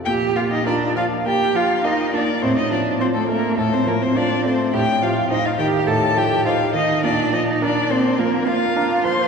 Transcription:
<<
  \new Staff \with { instrumentName = "Violin" } { \time 4/4 \key bes \major \tempo 4 = 104 g''8 f''16 ees''16 d''8 f''8 g''8 f''8 ees''8 d''8 | c''16 ees''16 d''8 c''16 a'16 bes'8 a'16 c''16 bes'16 c''16 d''8 c''8 | g''8 f''8 ees''16 f''16 g''8 a''8 g''8 f''8 ees''8 | d''8 ees''8 d''8 c''8 bes'8 f''4 c'''8 | }
  \new Staff \with { instrumentName = "Cello" } { \time 4/4 \key bes \major g'8 f'16 ees'16 d'8 f'8 g'8 f'8 ees'8 d'8 | c'16 ees'16 d'8 c'16 a16 bes8 a16 c'16 bes16 c'16 d'8 c'8 | g'8 f'8 ees'16 f'16 g'8 a'8 g'8 f'8 ees'8 | d'8 ees'8 d'8 c'8 bes8 f'4 c''8 | }
  \new Staff \with { instrumentName = "Grand piano" } { \time 4/4 \key bes \major bes,8 bes8 <f' bes'>8 f8 bes8 f8 <f' bes'>8 bes8 | a,8 f8 <f' c''>8 a8 a,8 f8 <f' c''>8 a8 | a,8 f8 <ees' c''>8 ees8 a,8 f8 <ees' c''>8 ees8 | bes,8 f8 <d' bes'>8 bes8 f8 bes8 <d' bes'>8 f8 | }
>>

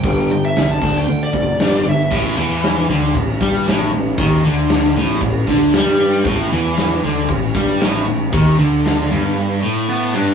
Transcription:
<<
  \new Staff \with { instrumentName = "Lead electric guitar" } { \time 4/4 \key g \mixolydian \tempo 4 = 116 g''8 g''16 e''8 a''8 g''8 d''4~ d''16 e''8 | r1 | r1 | r1 |
r2. b8 d'8 | }
  \new Staff \with { instrumentName = "Overdriven electric guitar" } { \clef bass \time 4/4 \key g \mixolydian <g, d g>8 <g, d>8 <g, d>8 <d a d'>8 <d a>8 <d a>8 <g, d g>8 <g, d>8 | a,8 e4 d8 a,8 g8 a,8 a,8 | dis8 d4 a,8 a,8 d8 g4 | a,8 e4 d8 a,8 g8 a,8 a,8 |
dis8 d4 g,4 a,4 g,8 | }
  \new Staff \with { instrumentName = "Distorted electric guitar" } { \clef bass \time 4/4 \key g \mixolydian r1 | a,8 e4 d8 a,8 g8 a,8 a,8 | dis8 d4 a,8 a,8 d8 g4 | a,8 e4 d8 a,8 g8 a,8 a,8 |
dis8 d4 g,4 a,4 g,8 | }
  \new Staff \with { instrumentName = "Fingered electric bass" } { \clef bass \time 4/4 \key g \mixolydian g,,4 c,8 d,8 d8 fis,,8 g,,8 g,,8 | a,,8 e,4 d,8 a,,8 g,8 a,,8 a,,8 | dis,8 d,4 a,,8 a,,8 d,8 g,4 | a,,8 e,4 d,8 a,,8 g,8 a,,8 a,,8 |
dis,8 d,4 g,,8 r2 | }
  \new DrumStaff \with { instrumentName = "Drums" } \drummode { \time 4/4 <hho bd>8 hho8 <hho sn>8 <hho bd>8 hho8 <hho bd>8 <hho sn>8 hho8 | <cymc bd>4 <cymc sn>4 <cymc bd>8 bd8 <cymc sn>4 | <cymc bd>4 <cymc sn>4 <cymc bd>8 bd8 <cymc sn>4 | <cymc bd>4 <cymc sn>4 <cymc bd>8 bd8 <cymc sn>4 |
<cymc bd>4 <cymc sn>4 r4 r4 | }
>>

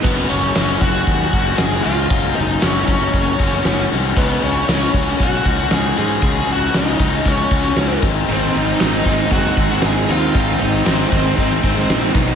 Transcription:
<<
  \new Staff \with { instrumentName = "Lead electric guitar" } { \time 4/4 \key gis \dorian \tempo 4 = 116 b8 cis'4 fis'4. gis'8 eis'8~ | eis'8 dis'8 cis'8 cis'2 r8 | b8 cis'4. fis'4 gis'8 gis'8~ | gis'8 fis'8 dis'4 cis'4. r8 |
bis8 dis'4. fis'4 gis'8 eis'8~ | eis'8 dis'8 bis8 bis8 bis4. r8 | }
  \new Staff \with { instrumentName = "Overdriven electric guitar" } { \time 4/4 \key gis \dorian <fis gis cis' fis'>4 <fis gis cis' fis'>8 <gis cis' fis'>4 <gis cis' fis'>4 <gis cis' fis'>8 | <fis gis cis' fis'>4 <fis gis cis' fis'>8 <gis cis' fis'>4 <gis cis' fis'>4 <gis cis' fis'>8 | <cis gis cis' fis'>4 <cis gis cis' fis'>8 <gis cis' fis'>4 <gis cis' fis'>4 <gis cis' fis'>8 | <cis gis cis' fis'>4 <cis gis cis' fis'>8 <gis cis' fis'>4 <gis cis' fis'>4 <gis, dis gis bis dis'>8 |
<gis, dis gis bis dis'>4 <gis, dis gis bis dis'>8 <gis bis dis'>4 <gis bis dis'>4 <gis bis dis'>8 | <gis, dis gis bis dis'>4 <gis, dis gis bis dis'>8 <gis bis dis'>4 <gis bis dis'>4 <b, dis fis b dis'>8 | }
  \new Staff \with { instrumentName = "Overdriven electric guitar" } { \time 4/4 \key gis \dorian r1 | r1 | r1 | r1 |
<gis, dis gis bis dis'>8 <gis bis dis'>8 <dis gis bis dis'>8 <gis bis dis'>8 <gis, dis gis bis dis'>4 <dis gis bis dis'>8 <gis bis dis'>8 | <gis, dis gis bis dis'>8 <gis bis dis'>8 <dis gis bis dis'>8 <gis bis dis'>8 <gis, dis gis bis dis'>4 <dis gis bis dis'>8 <b, dis fis b dis'>8 | }
  \new Staff \with { instrumentName = "Fingered electric bass" } { \clef bass \time 4/4 \key gis \dorian fis,,8 fis,,8 fis,,8 fis,,8 dis,8 fis,,8 fis,,8 cis,8 | fis,,8 fis,,8 fis,,8 fis,,8 fis,,8 fis,,8 fis,,8 bis,,8 | cis,8 cis,8 cis,8 cis,8 b,,8 cis,8 cis,8 gis,8 | cis,8 cis,8 cis,8 cis,8 cis,8 cis,8 cis,8 gis,,8 |
gis,,8 gis,,8 gis,,8 gis,,8 fis,,8 gis,,8 gis,,8 dis,8 | gis,,8 gis,,8 gis,,8 gis,,8 gis,,8 gis,,8 ais,,8 b,,8 | }
  \new DrumStaff \with { instrumentName = "Drums" } \drummode { \time 4/4 <cymc bd>8 cymc8 <cymc sn>8 <cymc bd>8 <cymc bd>8 <cymc bd>8 <cymc sn>8 cymc8 | <cymc bd>8 cymc8 <cymc sn>8 <cymc bd>8 <cymc bd>8 <cymc bd>16 sn16 <cymc sn>8 cymc8 | <cymc bd>8 cymc8 <cymc sn>8 <cymc bd>8 <cymc bd>8 <cymc bd>8 <cymc sn>8 cymc8 | <cymc bd>8 cymc8 <cymc sn>8 <cymc bd>8 <cymc bd>8 <cymc bd>16 sn16 <cymc sn>8 <cymc bd>8 |
cymc8 cymc8 <cymc sn>8 <cymc bd>8 <cymc bd>8 <cymc bd>16 sn16 <cymc sn>8 cymc8 | <cymc bd>8 cymc8 <cymc sn>8 <cymc bd>8 <cymc bd>8 <cymc bd>16 sn16 <cymc sn>8 <cymc bd>8 | }
>>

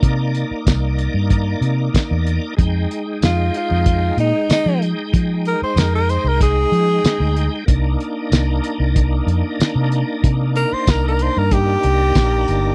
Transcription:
<<
  \new Staff \with { instrumentName = "Tenor saxophone" } { \time 4/4 \key c \minor \tempo 4 = 94 r1 | r4 f'8 f'4 ees'8 ees'8 r8 | r8 bes'16 c''16 bes'16 bes'16 c''16 bes'16 aes'2 | r1 |
r8 bes'16 c''16 bes'16 bes'16 c''16 bes'16 g'2 | }
  \new Staff \with { instrumentName = "Tonewheel organ" } { \time 4/4 \key c \minor <bes ees' d''>1 | <aes ees' g''>1~ | <aes ees' g''>1 | <bes d' ees'>1~ |
<bes d' ees'>1 | }
  \new Staff \with { instrumentName = "Fingered electric bass" } { \clef bass \time 4/4 \key c \minor c8. r16 c,8. g,8. c8 r16 e,8 r16 | f,8 r8 f,8 r16 f,8. bes,16 r8 f8 r16 | f8. r16 f,8. c,8. f8 r16 d,8 r16 | c,8 r8 c,8 r16 c,8. f,16 r8 c8 r16 |
c8. r16 c,8. g,8. c,8 bes,,8 g,,8 | }
  \new DrumStaff \with { instrumentName = "Drums" } \drummode { \time 4/4 <hh bd>8 hh8 <hh bd sn tamb>8 hh8 <hh bd>8 hh8 <hh bd sn tamb>8 hh8 | <hh bd>8 hh8 <hh sn tamb>8 hh8 <hh bd>8 hh8 <hh sn tamb>8 hh8 | <hh bd>8 hh8 <hh sn tamb>8 hh8 <hh bd>8 hh8 <hh sn tamb>8 hh8 | <hh bd>8 hh8 <hh sn tamb>8 hh8 <hh bd>8 hh8 <hh sn tamb>8 hh8 |
<hh bd>8 hh8 <hh bd sn tamb>8 hh8 <hh bd>8 hh8 <hh bd sn tamb>8 hh8 | }
>>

